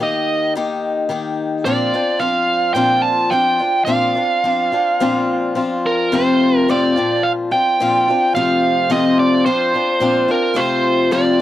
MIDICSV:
0, 0, Header, 1, 3, 480
1, 0, Start_track
1, 0, Tempo, 557103
1, 1426, Time_signature, 4, 2, 24, 8
1, 9835, End_track
2, 0, Start_track
2, 0, Title_t, "Lead electric guitar"
2, 0, Program_c, 0, 29
2, 25, Note_on_c, 0, 75, 73
2, 454, Note_off_c, 0, 75, 0
2, 1422, Note_on_c, 0, 74, 93
2, 1893, Note_on_c, 0, 77, 97
2, 1917, Note_off_c, 0, 74, 0
2, 2344, Note_off_c, 0, 77, 0
2, 2360, Note_on_c, 0, 79, 100
2, 2601, Note_on_c, 0, 81, 105
2, 2620, Note_off_c, 0, 79, 0
2, 2844, Note_on_c, 0, 79, 102
2, 2860, Note_off_c, 0, 81, 0
2, 3312, Note_off_c, 0, 79, 0
2, 3316, Note_on_c, 0, 77, 85
2, 4976, Note_off_c, 0, 77, 0
2, 5050, Note_on_c, 0, 70, 78
2, 5284, Note_off_c, 0, 70, 0
2, 5300, Note_on_c, 0, 72, 81
2, 5671, Note_off_c, 0, 72, 0
2, 5671, Note_on_c, 0, 70, 81
2, 5776, Note_off_c, 0, 70, 0
2, 5779, Note_on_c, 0, 74, 87
2, 6232, Note_on_c, 0, 77, 92
2, 6256, Note_off_c, 0, 74, 0
2, 6296, Note_off_c, 0, 77, 0
2, 6479, Note_on_c, 0, 79, 93
2, 7190, Note_off_c, 0, 79, 0
2, 7193, Note_on_c, 0, 77, 97
2, 7681, Note_on_c, 0, 75, 84
2, 7684, Note_off_c, 0, 77, 0
2, 7918, Note_off_c, 0, 75, 0
2, 7921, Note_on_c, 0, 74, 89
2, 8145, Note_off_c, 0, 74, 0
2, 8148, Note_on_c, 0, 72, 90
2, 8884, Note_on_c, 0, 70, 93
2, 8890, Note_off_c, 0, 72, 0
2, 9103, Note_on_c, 0, 72, 85
2, 9123, Note_off_c, 0, 70, 0
2, 9583, Note_off_c, 0, 72, 0
2, 9587, Note_on_c, 0, 74, 89
2, 9835, Note_off_c, 0, 74, 0
2, 9835, End_track
3, 0, Start_track
3, 0, Title_t, "Steel-string acoustic guitar"
3, 0, Program_c, 1, 25
3, 0, Note_on_c, 1, 51, 61
3, 1, Note_on_c, 1, 58, 66
3, 5, Note_on_c, 1, 67, 66
3, 7, Note_on_c, 1, 63, 65
3, 469, Note_off_c, 1, 51, 0
3, 476, Note_off_c, 1, 67, 0
3, 477, Note_off_c, 1, 63, 0
3, 478, Note_on_c, 1, 51, 81
3, 485, Note_off_c, 1, 58, 0
3, 488, Note_on_c, 1, 63, 89
3, 489, Note_on_c, 1, 58, 85
3, 490, Note_on_c, 1, 67, 77
3, 928, Note_off_c, 1, 51, 0
3, 938, Note_on_c, 1, 51, 70
3, 943, Note_off_c, 1, 58, 0
3, 946, Note_off_c, 1, 63, 0
3, 946, Note_on_c, 1, 58, 76
3, 947, Note_off_c, 1, 67, 0
3, 957, Note_on_c, 1, 63, 72
3, 957, Note_on_c, 1, 67, 70
3, 1421, Note_off_c, 1, 51, 0
3, 1425, Note_on_c, 1, 46, 78
3, 1428, Note_on_c, 1, 53, 78
3, 1429, Note_off_c, 1, 63, 0
3, 1429, Note_off_c, 1, 67, 0
3, 1431, Note_off_c, 1, 58, 0
3, 1432, Note_on_c, 1, 65, 91
3, 1433, Note_on_c, 1, 62, 92
3, 1434, Note_on_c, 1, 60, 88
3, 1658, Note_off_c, 1, 65, 0
3, 1663, Note_off_c, 1, 62, 0
3, 1665, Note_off_c, 1, 46, 0
3, 1667, Note_off_c, 1, 53, 0
3, 1669, Note_on_c, 1, 65, 57
3, 1670, Note_off_c, 1, 60, 0
3, 1673, Note_on_c, 1, 62, 55
3, 1681, Note_on_c, 1, 60, 48
3, 1887, Note_off_c, 1, 60, 0
3, 1890, Note_on_c, 1, 53, 67
3, 1894, Note_off_c, 1, 62, 0
3, 1897, Note_on_c, 1, 60, 64
3, 1899, Note_off_c, 1, 65, 0
3, 1904, Note_on_c, 1, 62, 66
3, 1910, Note_on_c, 1, 65, 69
3, 2367, Note_off_c, 1, 62, 0
3, 2368, Note_on_c, 1, 46, 86
3, 2372, Note_off_c, 1, 60, 0
3, 2375, Note_on_c, 1, 60, 88
3, 2376, Note_off_c, 1, 53, 0
3, 2377, Note_off_c, 1, 65, 0
3, 2377, Note_on_c, 1, 62, 87
3, 2379, Note_on_c, 1, 53, 88
3, 2380, Note_on_c, 1, 65, 96
3, 2850, Note_off_c, 1, 53, 0
3, 2854, Note_on_c, 1, 53, 61
3, 2856, Note_off_c, 1, 46, 0
3, 2857, Note_off_c, 1, 60, 0
3, 2861, Note_off_c, 1, 62, 0
3, 2861, Note_on_c, 1, 60, 58
3, 2865, Note_off_c, 1, 65, 0
3, 2868, Note_on_c, 1, 65, 70
3, 2869, Note_on_c, 1, 62, 58
3, 3086, Note_off_c, 1, 65, 0
3, 3089, Note_off_c, 1, 62, 0
3, 3096, Note_on_c, 1, 65, 50
3, 3099, Note_off_c, 1, 53, 0
3, 3099, Note_on_c, 1, 62, 47
3, 3102, Note_off_c, 1, 60, 0
3, 3113, Note_on_c, 1, 60, 39
3, 3327, Note_off_c, 1, 60, 0
3, 3328, Note_on_c, 1, 46, 80
3, 3330, Note_off_c, 1, 62, 0
3, 3332, Note_on_c, 1, 53, 86
3, 3337, Note_off_c, 1, 65, 0
3, 3338, Note_on_c, 1, 60, 86
3, 3340, Note_on_c, 1, 62, 95
3, 3347, Note_on_c, 1, 65, 90
3, 3567, Note_off_c, 1, 65, 0
3, 3576, Note_off_c, 1, 46, 0
3, 3577, Note_on_c, 1, 65, 56
3, 3578, Note_off_c, 1, 53, 0
3, 3579, Note_off_c, 1, 62, 0
3, 3581, Note_off_c, 1, 60, 0
3, 3589, Note_on_c, 1, 62, 49
3, 3595, Note_on_c, 1, 60, 45
3, 3814, Note_off_c, 1, 60, 0
3, 3820, Note_off_c, 1, 65, 0
3, 3824, Note_off_c, 1, 62, 0
3, 3824, Note_on_c, 1, 53, 63
3, 3825, Note_on_c, 1, 60, 69
3, 3835, Note_on_c, 1, 62, 71
3, 3838, Note_on_c, 1, 65, 66
3, 4057, Note_off_c, 1, 65, 0
3, 4064, Note_off_c, 1, 53, 0
3, 4064, Note_off_c, 1, 60, 0
3, 4065, Note_off_c, 1, 62, 0
3, 4067, Note_on_c, 1, 65, 56
3, 4076, Note_on_c, 1, 62, 52
3, 4081, Note_on_c, 1, 60, 50
3, 4306, Note_off_c, 1, 65, 0
3, 4307, Note_off_c, 1, 60, 0
3, 4310, Note_off_c, 1, 62, 0
3, 4310, Note_on_c, 1, 53, 88
3, 4312, Note_on_c, 1, 46, 88
3, 4317, Note_on_c, 1, 60, 98
3, 4321, Note_on_c, 1, 62, 99
3, 4325, Note_on_c, 1, 65, 97
3, 4773, Note_off_c, 1, 53, 0
3, 4774, Note_off_c, 1, 60, 0
3, 4784, Note_off_c, 1, 62, 0
3, 4784, Note_on_c, 1, 53, 72
3, 4785, Note_on_c, 1, 60, 67
3, 4788, Note_off_c, 1, 46, 0
3, 4788, Note_off_c, 1, 65, 0
3, 4794, Note_on_c, 1, 62, 71
3, 4799, Note_on_c, 1, 65, 76
3, 5264, Note_off_c, 1, 53, 0
3, 5265, Note_off_c, 1, 60, 0
3, 5269, Note_off_c, 1, 62, 0
3, 5272, Note_off_c, 1, 65, 0
3, 5273, Note_on_c, 1, 41, 87
3, 5276, Note_on_c, 1, 48, 77
3, 5277, Note_on_c, 1, 53, 79
3, 5283, Note_on_c, 1, 57, 75
3, 5283, Note_on_c, 1, 60, 87
3, 5286, Note_on_c, 1, 65, 98
3, 5749, Note_off_c, 1, 41, 0
3, 5750, Note_off_c, 1, 48, 0
3, 5754, Note_off_c, 1, 57, 0
3, 5760, Note_on_c, 1, 41, 77
3, 5767, Note_off_c, 1, 53, 0
3, 5767, Note_on_c, 1, 48, 76
3, 5768, Note_off_c, 1, 65, 0
3, 5770, Note_on_c, 1, 53, 74
3, 5770, Note_on_c, 1, 57, 81
3, 5772, Note_on_c, 1, 65, 80
3, 5773, Note_off_c, 1, 60, 0
3, 5777, Note_on_c, 1, 60, 83
3, 5987, Note_off_c, 1, 65, 0
3, 5992, Note_off_c, 1, 41, 0
3, 5996, Note_off_c, 1, 48, 0
3, 5997, Note_off_c, 1, 60, 0
3, 5997, Note_on_c, 1, 65, 72
3, 5998, Note_off_c, 1, 53, 0
3, 5998, Note_off_c, 1, 57, 0
3, 6008, Note_on_c, 1, 60, 59
3, 6008, Note_on_c, 1, 62, 56
3, 6010, Note_on_c, 1, 53, 57
3, 6018, Note_on_c, 1, 46, 59
3, 6469, Note_off_c, 1, 65, 0
3, 6471, Note_off_c, 1, 62, 0
3, 6473, Note_on_c, 1, 65, 54
3, 6482, Note_off_c, 1, 46, 0
3, 6482, Note_on_c, 1, 62, 48
3, 6484, Note_off_c, 1, 60, 0
3, 6488, Note_on_c, 1, 60, 41
3, 6709, Note_off_c, 1, 65, 0
3, 6714, Note_off_c, 1, 62, 0
3, 6717, Note_off_c, 1, 60, 0
3, 6718, Note_off_c, 1, 53, 0
3, 6721, Note_on_c, 1, 53, 74
3, 6725, Note_on_c, 1, 46, 82
3, 6733, Note_on_c, 1, 62, 82
3, 6734, Note_on_c, 1, 60, 90
3, 6736, Note_on_c, 1, 65, 88
3, 6952, Note_off_c, 1, 65, 0
3, 6954, Note_off_c, 1, 53, 0
3, 6955, Note_off_c, 1, 46, 0
3, 6959, Note_off_c, 1, 62, 0
3, 6960, Note_off_c, 1, 60, 0
3, 6962, Note_on_c, 1, 65, 53
3, 6978, Note_on_c, 1, 62, 50
3, 6985, Note_on_c, 1, 60, 47
3, 7194, Note_off_c, 1, 65, 0
3, 7196, Note_off_c, 1, 60, 0
3, 7196, Note_on_c, 1, 41, 79
3, 7202, Note_off_c, 1, 62, 0
3, 7205, Note_on_c, 1, 53, 90
3, 7205, Note_on_c, 1, 57, 90
3, 7206, Note_on_c, 1, 60, 83
3, 7207, Note_on_c, 1, 48, 81
3, 7207, Note_on_c, 1, 65, 89
3, 7655, Note_off_c, 1, 41, 0
3, 7659, Note_off_c, 1, 48, 0
3, 7659, Note_off_c, 1, 57, 0
3, 7661, Note_off_c, 1, 53, 0
3, 7665, Note_on_c, 1, 41, 83
3, 7665, Note_on_c, 1, 53, 85
3, 7669, Note_off_c, 1, 60, 0
3, 7669, Note_on_c, 1, 48, 82
3, 7670, Note_on_c, 1, 57, 77
3, 7672, Note_on_c, 1, 60, 85
3, 7679, Note_off_c, 1, 65, 0
3, 7683, Note_on_c, 1, 65, 87
3, 8146, Note_off_c, 1, 41, 0
3, 8148, Note_off_c, 1, 48, 0
3, 8148, Note_off_c, 1, 53, 0
3, 8149, Note_off_c, 1, 57, 0
3, 8150, Note_off_c, 1, 60, 0
3, 8151, Note_on_c, 1, 53, 68
3, 8154, Note_on_c, 1, 60, 70
3, 8154, Note_on_c, 1, 62, 62
3, 8157, Note_off_c, 1, 65, 0
3, 8160, Note_on_c, 1, 65, 73
3, 8378, Note_off_c, 1, 65, 0
3, 8389, Note_off_c, 1, 53, 0
3, 8389, Note_on_c, 1, 65, 50
3, 8391, Note_off_c, 1, 60, 0
3, 8391, Note_off_c, 1, 62, 0
3, 8405, Note_on_c, 1, 60, 39
3, 8405, Note_on_c, 1, 62, 47
3, 8617, Note_off_c, 1, 60, 0
3, 8617, Note_off_c, 1, 62, 0
3, 8617, Note_on_c, 1, 46, 69
3, 8621, Note_on_c, 1, 53, 92
3, 8626, Note_off_c, 1, 65, 0
3, 8627, Note_on_c, 1, 62, 76
3, 8628, Note_on_c, 1, 60, 80
3, 8636, Note_on_c, 1, 65, 92
3, 8850, Note_off_c, 1, 65, 0
3, 8860, Note_off_c, 1, 62, 0
3, 8860, Note_on_c, 1, 65, 55
3, 8863, Note_off_c, 1, 46, 0
3, 8864, Note_off_c, 1, 53, 0
3, 8868, Note_off_c, 1, 60, 0
3, 8870, Note_on_c, 1, 62, 46
3, 8882, Note_on_c, 1, 60, 47
3, 9080, Note_on_c, 1, 41, 77
3, 9088, Note_on_c, 1, 48, 81
3, 9089, Note_off_c, 1, 60, 0
3, 9090, Note_off_c, 1, 65, 0
3, 9092, Note_on_c, 1, 53, 84
3, 9095, Note_off_c, 1, 62, 0
3, 9099, Note_on_c, 1, 60, 93
3, 9100, Note_on_c, 1, 57, 97
3, 9100, Note_on_c, 1, 65, 91
3, 9566, Note_off_c, 1, 48, 0
3, 9570, Note_off_c, 1, 41, 0
3, 9574, Note_off_c, 1, 57, 0
3, 9576, Note_on_c, 1, 48, 82
3, 9581, Note_on_c, 1, 41, 81
3, 9582, Note_off_c, 1, 53, 0
3, 9584, Note_off_c, 1, 60, 0
3, 9584, Note_on_c, 1, 57, 83
3, 9585, Note_off_c, 1, 65, 0
3, 9585, Note_on_c, 1, 53, 81
3, 9588, Note_on_c, 1, 60, 82
3, 9588, Note_on_c, 1, 65, 84
3, 9807, Note_off_c, 1, 65, 0
3, 9813, Note_off_c, 1, 60, 0
3, 9815, Note_off_c, 1, 53, 0
3, 9820, Note_off_c, 1, 57, 0
3, 9822, Note_off_c, 1, 48, 0
3, 9824, Note_off_c, 1, 41, 0
3, 9835, End_track
0, 0, End_of_file